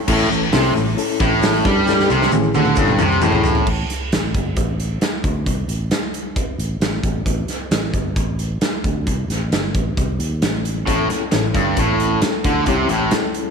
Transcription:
0.08 A1 A2 C#4 E4 A4, kick, crash, shaker
0.20 shaker
0.30 A1 A2, shaker
0.43 shaker
0.53 C2 C3 C#4 E4 A4, snare, open hi-hat, shaker
0.75 A1 A2, shaker
0.88 shaker
0.97 C#4 E4 A4, open hi-hat, shaker
1.10 shaker
1.20 A1 A2, kick, shaker
1.41 C#4 E4 A4, snare, open hi-hat, shaker
1.55 shaker
1.65 G2 G3, kick, shaker
1.87 C#4 E4 A4, snare, shaker
2.00 snare, shaker
2.10 C2 C3, shaker
2.21 snare, shaker
2.32 A1 A2 C#4 E4 G#4, high tom, shaker
2.43 shaker
2.54 D2 D3, high tom, shaker
2.65 mid tom, shaker
2.76 G1 G2 C#4 E4 A4, kick, shaker
2.88 mid tom, shaker
2.99 C2 C3, mid tom, shaker
3.11 shaker
3.22 A1 A2 C#4 E4 G#4, mid tom, shaker
3.32 floor tom, shaker
3.44 floor tom, shaker
3.55 floor tom, shaker
3.67 A1, kick, crash
3.89 muted fingered electric bass stroke, snare, closed hi-hat
4.12 A1, snare, closed hi-hat
4.34 G1, kick, closed hi-hat
4.56 A1, kick, closed hi-hat
4.80 closed hi-hat
5.01 muted fingered electric bass stroke, snare, closed hi-hat
5.24 D2, kick, closed hi-hat
5.46 C2, kick, closed hi-hat
5.68 A1, closed hi-hat
5.91 snare, closed hi-hat
6.14 closed hi-hat
6.36 kick, closed hi-hat
6.58 A1, closed hi-hat
6.80 A1, snare, closed hi-hat
7.03 A1, kick, closed hi-hat
7.26 A1, kick, closed hi-hat
7.48 muted fingered electric bass stroke, snare, closed hi-hat
7.71 A1, snare, closed hi-hat
7.93 G1, kick, closed hi-hat
8.16 A1, kick, closed hi-hat
8.39 closed hi-hat
8.61 muted fingered electric bass stroke, snare, closed hi-hat
8.84 D2, kick, closed hi-hat
9.06 C2, kick, closed hi-hat
9.28 A1, snare, closed hi-hat
9.51 G1, snare, closed hi-hat
9.74 A1, kick, closed hi-hat
9.97 C2, kick, closed hi-hat
10.19 D#2, closed hi-hat
10.42 A1, snare, closed hi-hat
10.65 closed hi-hat
10.86 A1 A2 C#4 E4 A4, kick, closed hi-hat
11.10 muted distorted electric guitar stroke, muted overdriven electric guitar stroke, muted fingered electric bass stroke, snare, closed hi-hat
11.32 A1 A2 C#4 E4 A4, snare, closed hi-hat
11.54 G1 G2, kick, closed hi-hat
11.76 A1 A2 C#4 E4 A4, kick, closed hi-hat
12.00 closed hi-hat
12.22 C#4 E4 A4, muted distorted electric guitar stroke, muted overdriven electric guitar stroke, snare, closed hi-hat
12.44 D2 D3, kick, closed hi-hat
12.66 C2 C3 C#4 E4 G4, kick, closed hi-hat
12.89 A1 A2, closed hi-hat
13.11 C#4 E4 A4, snare, closed hi-hat
13.34 closed hi-hat

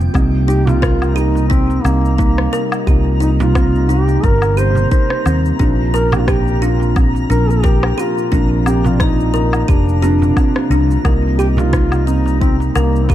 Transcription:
Already playing: C4 G5
0.00 darbuka ka, shaker
0.13 C2 C3 F3 G3 A#3 C4 D#4 A#5, kick, low woodblock, shaker
0.48 D#4 G4, shaker
0.66 C3 F3 A#3 D#4 F4, darbuka tek, darbuka dum, shaker
0.82 A#4, kick, cross-stick, shaker
1.02 low woodblock, shaker
1.11 F4
1.15 D#4 G4, shaker
1.35 darbuka ka, darbuka tek, shaker
1.48 C4 D#4, kick, shaker
1.70 darbuka ka, shaker
1.83 C2 A#3 C4, low woodblock, shaker
2.05 shaker
2.17 A#3 D#4, kick, darbuka tek, shaker
2.38 cross-stick, darbuka ka
2.52 A#4, darbuka ka, shaker
2.72 low woodblock, shaker
2.86 C2 C3 F3 A#3 D#4 G4, kick, shaker
3.20 D#4, darbuka ka, shaker
3.38 C3 F3 A#3 D#4 F4, darbuka tek, darbuka dum, shaker
3.55 C4, kick, cross-stick, low woodblock, shaker
3.75 shaker
3.89 D#4 G4, shaker
4.08 darbuka ka, darbuka tek, shaker
4.24 G1 A#4, kick, shaker
4.42 low woodblock, shaker
4.57 G4 C5, shaker
4.75 darbuka dum, shaker
4.91 D#4 C5, kick, shaker
5.10 cross-stick
5.26 D#2 C4, low woodblock, shaker
5.46 shaker
5.59 A#1 A#2 C3 F3 A#3 D4 F4, kick, shaker
5.94 A#4, shaker
6.11 C3 F3 A#3 G4, darbuka tek, darbuka dum, low woodblock, shaker
6.15 D4
6.19 F4
6.27 G4, kick, cross-stick, shaker
6.47 shaker
6.62 D4 F4, shaker
6.80 darbuka ka, darbuka tek, shaker
6.96 C4, kick, low woodblock, shaker
7.15 darbuka ka, shaker
7.30 A#1 D4 A#4, shaker
7.50 G4, shaker
7.63 A#4, kick, darbuka tek, shaker
7.83 cross-stick, darbuka ka, low woodblock
7.98 F4 G4, darbuka ka, shaker
8.18 shaker
8.32 A#1 C3 F3 A#3 D4, kick, shaker
8.66 C4 G4, low woodblock, shaker
8.84 C3 F3 A#3 F4, darbuka tek, darbuka dum, shaker
8.88 D5
9.00 D#4 D5, kick, cross-stick, shaker
9.20 shaker
9.34 A#4, shaker
9.53 darbuka ka, darbuka tek, low woodblock, shaker
9.68 F1 D4 G4, kick, shaker
9.89 shaker
10.02 C3 F3 A#3 D4, shaker
10.22 darbuka dum, shaker
10.37 C4, kick, low woodblock, shaker
10.55 C3 F3 A#3 D4, cross-stick
10.70 C2 D4, shaker
10.91 shaker
11.04 C2 C3 F3 G3 A#3 D#4 A#4, kick, low woodblock, shaker
11.38 G4, shaker
11.56 C3 F3 A#3 F4, darbuka tek, darbuka dum, shaker
11.61 D#4
11.73 D#4, kick, cross-stick, shaker
11.92 low woodblock, shaker
12.07 C4 D#4, shaker
12.26 darbuka ka, darbuka tek, shaker
12.40 C4 D#4, kick, shaker
12.60 darbuka ka, shaker
12.74 C2 A#3 A#4, low woodblock, shaker
12.96 shaker
13.03 C4
13.09 A#3 G4, kick, darbuka tek, shaker

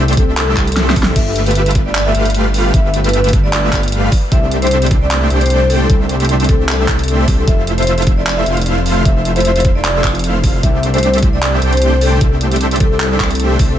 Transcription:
Already playing: C2 A3 D4 G4 C5 E5
0.08 closed hi-hat
0.13 closed hi-hat
0.17 A4, kick, closed hi-hat
0.37 A4, clap, closed hi-hat
0.57 C2 A3 D4 G4 C5, kick, clap, closed hi-hat
0.67 A4, closed hi-hat
0.72 closed hi-hat
0.76 snare, closed hi-hat
0.90 snare
0.96 C2 A3 D4, kick, open hi-hat
1.03 snare
1.07 A4
1.16 G1 A3 F4 G4 A4 B4 E5, kick, closed hi-hat, crash
1.36 closed hi-hat
1.46 B4, closed hi-hat
1.51 closed hi-hat
1.55 closed hi-hat
1.66 closed hi-hat
1.71 closed hi-hat
1.75 kick, closed hi-hat
1.86 D5
1.95 clap, closed hi-hat
2.06 E5
2.15 G1 A3 F4 G4 B4 F5, closed hi-hat
2.25 closed hi-hat
2.30 closed hi-hat
2.34 closed hi-hat
2.54 open hi-hat
2.74 G1 A3 F4 G4 B4 E5, kick, closed hi-hat
2.94 closed hi-hat
3.04 B4, closed hi-hat
3.09 closed hi-hat
3.13 B4, closed hi-hat
3.24 closed hi-hat
3.29 closed hi-hat
3.33 kick, closed hi-hat
3.44 D5
3.53 clap, closed hi-hat
3.73 G1 F4 G4, kick, clap, closed hi-hat
3.83 closed hi-hat
3.88 closed hi-hat
3.92 closed hi-hat
4.12 kick, open hi-hat
4.32 C2 A3 D4 G4 C5 E5, kick, closed hi-hat
4.51 closed hi-hat
4.62 C5, closed hi-hat
4.67 closed hi-hat
4.71 closed hi-hat
4.82 closed hi-hat
4.86 closed hi-hat
4.91 kick, closed hi-hat
5.02 D5
5.11 clap, closed hi-hat
5.30 C2 A3 D4 G4 C5 G5, closed hi-hat
5.41 C5, closed hi-hat
5.46 closed hi-hat
5.50 closed hi-hat
5.70 A4, open hi-hat
5.81 A4
5.90 C2 A3 D4 G4 C5 E5, kick, closed hi-hat
6.09 closed hi-hat
6.20 closed hi-hat
6.25 closed hi-hat
6.29 closed hi-hat
6.40 closed hi-hat
6.44 closed hi-hat
6.49 A4, kick, closed hi-hat
6.68 A4, clap, closed hi-hat
6.88 C2, kick, clap, closed hi-hat
6.99 A4, closed hi-hat
7.04 closed hi-hat
7.08 closed hi-hat
7.28 C2 A3 G4 E5, kick, open hi-hat
7.38 A4
7.48 F1 A3 E4 F4 A4 C5 E5, kick, closed hi-hat
7.67 closed hi-hat
7.78 C5, closed hi-hat
7.83 closed hi-hat
7.87 closed hi-hat
7.98 closed hi-hat
8.02 closed hi-hat
8.07 kick, closed hi-hat
8.17 D5
8.27 clap, closed hi-hat
8.37 E5
8.46 F1 A3 E4 F4 C5 F5, closed hi-hat
8.57 closed hi-hat
8.62 closed hi-hat
8.66 closed hi-hat
8.86 open hi-hat
9.05 F1 A3 E4 F4 C5 E5, kick, closed hi-hat
9.25 closed hi-hat
9.36 C5, closed hi-hat
9.40 closed hi-hat
9.45 C5, closed hi-hat
9.56 closed hi-hat
9.60 closed hi-hat
9.65 kick, closed hi-hat
9.75 D5
9.84 clap, closed hi-hat
10.04 F1 E4 F4, kick, clap, closed hi-hat
10.15 closed hi-hat
10.19 closed hi-hat
10.24 closed hi-hat
10.44 kick, open hi-hat
10.63 C2 A3 D4 G4 C5 E5, kick, closed hi-hat
10.83 closed hi-hat
10.94 C5, closed hi-hat
10.98 closed hi-hat
11.03 closed hi-hat
11.14 closed hi-hat
11.18 closed hi-hat
11.23 kick, closed hi-hat
11.33 D5
11.42 clap, closed hi-hat
11.62 C2 A3 D4 G4 C5 G5, closed hi-hat
11.73 C5, closed hi-hat
11.77 closed hi-hat
11.82 closed hi-hat
12.01 A4, open hi-hat
12.12 A4
12.21 C2 A3 D4 G4 C5 E5, kick, closed hi-hat
12.41 closed hi-hat
12.52 closed hi-hat
12.56 closed hi-hat
12.61 closed hi-hat
12.71 closed hi-hat
12.76 closed hi-hat
12.80 A4, kick, closed hi-hat
13.00 A4, clap, closed hi-hat
13.20 C2 A3 D4 G4, kick, clap, closed hi-hat
13.31 A4, closed hi-hat
13.35 closed hi-hat
13.40 closed hi-hat
13.59 C2 A3 E5, kick, open hi-hat
13.70 A4

